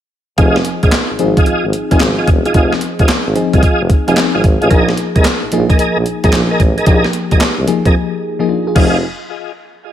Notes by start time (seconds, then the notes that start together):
0.38 F1 F3 C4 D#4 F4 G#4 D#5, kick, closed hi-hat
0.56 snare
0.65 closed hi-hat
0.83 A#1 F4 G#4 D#5, kick, closed hi-hat
0.92 snare, clap, closed hi-hat
1.11 G#1
1.19 G#1 F3 C4 D#4 G#4, closed hi-hat
1.37 F4 G#4 D#5, kick, closed hi-hat
1.46 G#1 F4 G#4 D#5, closed hi-hat
1.64 G#1
1.73 closed hi-hat
1.91 F1 F3 C4 D#4 F4 G#4 D#5, kick, closed hi-hat
2.00 G#1, snare, clap, closed hi-hat
2.18 F4 G#4 D#5
2.27 E1, kick, closed hi-hat
2.46 F4 G#4 D#5, closed hi-hat
2.54 F1 F3 C4 D#4 F4 G#4 D#5, kick, closed hi-hat
2.73 snare
2.81 closed hi-hat
2.99 F1 F4 G#4 D#5, kick, closed hi-hat
3.08 snare, clap, closed hi-hat
3.27 G#1
3.35 F3 C4 D#4 G#4, closed hi-hat
3.53 C2 F4 G#4 D#5, kick, closed hi-hat
3.63 F4 G#4 D#5, kick, closed hi-hat
3.81 F1
3.90 kick, closed hi-hat
4.08 F1 F3 C4 D#4 F4 G#4 D#5, closed hi-hat
4.17 snare, clap, closed hi-hat
4.35 G#1 F4 G#4 D#5
4.44 G#1, kick, closed hi-hat
4.61 A1 F4 G#4 D#5, closed hi-hat
4.70 A#1 F3 A#3 D#4 G#4 A#4 D#5, kick, closed hi-hat
4.89 snare
4.97 closed hi-hat
5.15 C2 G#4 A#4 D#5, kick, closed hi-hat
5.25 snare, clap, closed hi-hat
5.43 A#1
5.52 A#1 F3 A#3 D#4 G#4, closed hi-hat
5.70 G#4 A#4 D#5, kick, closed hi-hat
5.78 A#1 G#4 A#4 D#5, closed hi-hat
5.96 A#1
6.06 closed hi-hat
6.24 G#1 F3 A#3 D#4 G#4 A#4 D#5, kick, closed hi-hat
6.33 A#1, snare, clap, closed hi-hat
6.51 G#4 A#4 D#5
6.60 A1, kick, closed hi-hat
6.78 G#4 A#4 D#5, closed hi-hat
6.86 A#1 F3 A#3 D#4 G4 G#4 A#4 D#5, kick, closed hi-hat
7.04 snare
7.13 closed hi-hat
7.31 A#1 G#4 A#4 D#5, kick, closed hi-hat
7.40 snare, clap, closed hi-hat
7.59 C2
7.67 F3 A#3 D#4 G#4, closed hi-hat
7.85 F2 G#4 A#4 D#5, kick, closed hi-hat
8.39 F3 A#3 D#4 G#4
8.49 D4 F4
8.67 F4 G#4
8.75 F1 F3 C4 D#4 F4 G#4 D#5, kick, crash